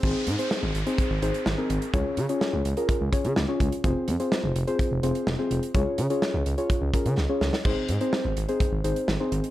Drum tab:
CC |----------------|----------------|----------------|----------------|
HH |x-xx--xxx-xx--xx|x-xx--xxx-xx--xx|x-xx--xxx-xx--xx|x-xx--xxx-xx----|
SD |----o-------o---|----o-------o---|----o-------o---|----o-------o-oo|
BD |o-------o-------|o-------o-o---o-|o-------o-------|o-------o-o-----|

CC |x---------------|
HH |--xx--xxx-xx--xx|
SD |----o-------o---|
BD |o-------o-------|